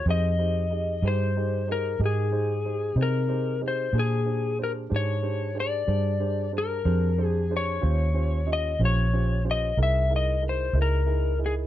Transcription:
0.06 fingered electric bass F2, upright piano D#4 G4 G#4 C5
0.10 electric slide guitar D#5
0.38 upright piano D#4 G4 G#4 C5
0.70 upright piano D#4 G4 G#4 D#5
1.02 fingered electric bass G2, upright piano D#4 G4 G#4 C5
1.08 electric slide guitar C5
1.36 upright piano D#4 G4 G#4 C5
1.68 upright piano D#4 G4 G#4 C5
1.72 electric slide guitar A#4
1.99 fingered electric bass G#2, upright piano D#4 G4 G#4 A#4
2.06 electric slide guitar G#4
2.32 upright piano D#4 G4 G#4 C5
2.65 upright piano D#4 G4 G#4 C5
2.96 fingered electric bass C3, upright piano D#4 G4 G#4 C5
3.02 electric slide guitar A#4
3.28 upright piano D#4 G4 G#4 C5
3.61 upright piano D#4 G4 G#4 C5
3.68 electric slide guitar C5
3.93 fingered electric bass A#2, upright piano D4 G4 G#4 C5
3.99 electric slide guitar G#4
4.25 upright piano D4 G4 G#4 C5
4.58 upright piano D4 G4 G#4 C5
4.64 electric slide guitar A#4
4.89 fingered electric bass G#2, upright piano D4 G4 G#4 C5
4.96 electric slide guitar C#5
5.22 upright piano D4 G4 G#4 C5
5.54 upright piano D4 G4 G#4 C5
5.60 electric slide guitar D5
5.87 fingered electric bass G2, upright piano D4 G4 G#4 C5
6.19 upright piano D4 G4 G#4 C5
6.52 upright piano D4 G4 G#4 C5
6.58 electric slide guitar A#4
6.84 fingered electric bass F2, upright piano D4 G4 G#4 C5
7.17 upright piano D4 G4 G#4 C5
7.27 electric slide guitar G#4
7.50 upright piano D4 G4 G#4 C5
7.57 electric slide guitar C#5
7.81 fingered electric bass D#2, upright piano C#4 F4 G4 C5
8.14 upright piano C#4 F4 G4 C5
8.46 upright piano C#4 F4 G4 D#5
8.53 electric slide guitar D#5
8.79 fingered electric bass A#1, upright piano C#4 F4 G4 C5
8.85 electric slide guitar C#5
9.13 upright piano C#4 F4 G4 C5
9.44 upright piano C#4 F4 G4 C5
9.51 electric slide guitar D#5
9.77 fingered electric bass C2, upright piano D#4 E4 G#4 A#4
9.83 electric slide guitar E5
10.10 upright piano D#4 E4 G#4 A#4
10.16 electric slide guitar D#5
10.42 upright piano D#4 E4 G#4 A#4
10.49 electric slide guitar C5
10.73 fingered electric bass C#2, upright piano D#4 E4 G#4 A#4
10.82 electric slide guitar A#4
11.06 upright piano D#4 E4 G#4 A#4
11.39 upright piano D#4 E4 G#4 A#4
11.46 electric slide guitar G#4

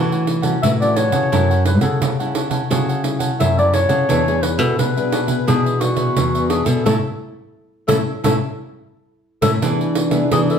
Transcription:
Already playing: nylon-string guitar A2 E3 F#3 C#4 E4, cavaquinho F#4 A4 C#5 F#5
0.12 cavaquinho A4 C#5 F#5, pandeiro
0.27 muted cavaquinho stroke, pandeiro
0.42 nylon-string guitar F#3 C#4 E4, cavaquinho A4 C#5 F#5, pandeiro
0.63 nylon-string guitar A2 E3, clarinet E5, pandeiro
0.81 nylon-string guitar F#3 C#4 E4, cavaquinho A4 C#5 F#5, clarinet D5, pandeiro
0.96 cavaquinho F#4 A4 C#5 F#5, clarinet C#5, pandeiro
1.12 nylon-string guitar C#3, cavaquinho A4 C#5 F#5, pandeiro
1.32 nylon-string guitar F#2 F#3 C#4 E4 A4, cavaquinho E4 A4 C#5 F#5, pandeiro
1.50 cavaquinho A4 C#5 F#5, pandeiro
1.65 nylon-string guitar C#4 E4 A4, clarinet B4, muted cavaquinho stroke, pandeiro
1.81 nylon-string guitar C#3, clarinet A4, cavaquinho A4 C#5 F#5, pandeiro
2.02 nylon-string guitar C#3, pandeiro
2.19 nylon-string guitar C#4 E4 A4, cavaquinho A4 C#5 F#5, pandeiro
2.34 cavaquinho E4 A4 C#5 F#5, pandeiro
2.50 nylon-string guitar C#4 E4 A4, cavaquinho A4 C#5 F#5, pandeiro
2.70 nylon-string guitar C#3 F#3 C#4 E4 A4, cavaquinho E4 A4 C#5 F#5, pandeiro
2.89 cavaquinho A4 C#5 F#5, pandeiro
3.03 nylon-string guitar C#4 E4 A4, muted cavaquinho stroke, pandeiro
3.19 cavaquinho A4 C#5 F#5, pandeiro
3.40 nylon-string guitar F#2 C#3, clarinet E5, pandeiro
3.58 nylon-string guitar C#4 E4 A4, cavaquinho A4 C#5 F#5, clarinet D5, pandeiro
3.73 cavaquinho E4 A4 C#5 F#5, clarinet C#5, pandeiro
3.89 nylon-string guitar C#3, cavaquinho A4 C#5 F#5, pandeiro
4.09 nylon-string guitar E2 E3 B3 D4 G#4, cavaquinho D4 G#4 B4 E5, pandeiro
4.27 nylon-string guitar B3 D4 G#4, cavaquinho G#4 B4 E5, pandeiro
4.42 clarinet B4, muted cavaquinho stroke, pandeiro
4.58 nylon-string guitar B2, cavaquinho G#4 B4 E5, clarinet A4, pandeiro
4.78 nylon-string guitar B2 B3 D4 G#4, clarinet B4, pandeiro
4.96 nylon-string guitar B3 D4 G#4, cavaquinho G#4 B4 E5, pandeiro
5.11 cavaquinho D4 G#4 B4 E5, pandeiro
5.27 nylon-string guitar B3 D4 G#4, cavaquinho G#4 B4 E5, pandeiro
5.47 nylon-string guitar B2 E3, cavaquinho D4 G#4 B4 E5, clarinet G#4, pandeiro
5.65 cavaquinho G#4 B4 E5, pandeiro
5.80 nylon-string guitar B3 D4 G#4, clarinet F#4, muted cavaquinho stroke, pandeiro
5.96 cavaquinho G#4 B4 E5, pandeiro
6.17 nylon-string guitar E2 B2, pandeiro
6.35 nylon-string guitar B3 D4 G#4, cavaquinho G#4 B4 E5, pandeiro
6.49 cavaquinho D4 G#4 B4 E5, clarinet G#4, pandeiro
6.65 nylon-string guitar B2, cavaquinho G#4 B4 E5, clarinet A4, pandeiro
6.86 nylon-string guitar A2 A3 C#4 E4, cavaquinho A4 C#5 E5, clarinet A4, pandeiro
7.88 nylon-string guitar A2 A3 C#4 E4, clarinet A4, cavaquinho A4 C#5 E5, pandeiro
8.24 nylon-string guitar A2 A3 C#4 E4, cavaquinho A4 C#5 E5, clarinet A4, pandeiro
9.42 nylon-string guitar A2 A3 C#4 E4, clarinet A4, cavaquinho A4 C#5 E5, pandeiro
9.62 nylon-string guitar E3 B3 D4 G#4, cavaquinho D4 G#4 B4 E5, trombone D4, pandeiro
9.80 cavaquinho G#4 B4 E5, pandeiro
9.95 muted cavaquinho stroke, pandeiro
10.11 nylon-string guitar B3 D4 G#4, cavaquinho G#4 B4 E5, pandeiro
10.31 nylon-string guitar B2 E3 B3 D4 G#4, clarinet G#4, pandeiro
10.49 cavaquinho G#4 B4 E5, clarinet A4, pandeiro

